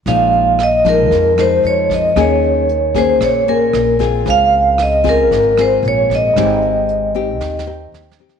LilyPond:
<<
  \new Staff \with { instrumentName = "Vibraphone" } { \time 4/4 \key bes \dorian \tempo 4 = 114 f''4 ees''8 bes'4 c''8 des''8 ees''8 | des''4. c''8 des''8 bes'4 r8 | f''4 ees''8 bes'4 c''8 des''8 ees''8~ | ees''2. r4 | }
  \new Staff \with { instrumentName = "Grand piano" } { \time 4/4 \key bes \dorian r1 | r1 | <aes' c'' f''>1 | <ees' c'' g''>2~ <ees' c'' g''>8 <ees' c'' g''>4. | }
  \new Staff \with { instrumentName = "Nylon-string guitar" } { \time 4/4 \key bes \dorian << { <f aes ees'>4 r8 <f aes ees'>4 <f aes ees'>4. | <bes des' aes'>4 r8 <bes des' aes'>4 <bes des' aes'>4 <c' f' aes'>8~ | <c' f' aes'>4. <c' f' aes'>4 <c' f' aes'>4. | <c' ees' g'>4. <c' ees' g'>4 <c' ees' g'>4 <c' ees' g'>8 | } \\ { bes,2 f,2 | ees2 bes,2 | des2 aes,2 | aes2 ees2 | } >> }
  \new Staff \with { instrumentName = "Upright bass" } { \clef bass \time 4/4 \key bes \dorian bes,,2 f,4 f,4 | ees,2 bes,,4 bes,,4 | des,2 aes,,4 bes,,4 | aes,,2 ees,4 ees,4 | }
  \new DrumStaff \with { instrumentName = "Drums" } \drummode { \time 4/4 <hh bd>8 hh8 <hh ss>8 <hh bd>8 <hh bd>8 ss8 hh8 <hh bd>8 | <hh bd ss>8 hh8 hh8 <hh bd>8 <hh bd ss>8 hh8 <hh ss>8 <hh bd>8 | <hh bd>8 hh8 <hh ss>8 <hh bd>8 <hh bd>8 <hh ss>8 hh8 <hh bd>8 | <hh bd ss>8 hh8 hh8 hh8 \tuplet 3/2 { <bd sn>8 sn8 r8 sn8 sn8 sn8 } | }
>>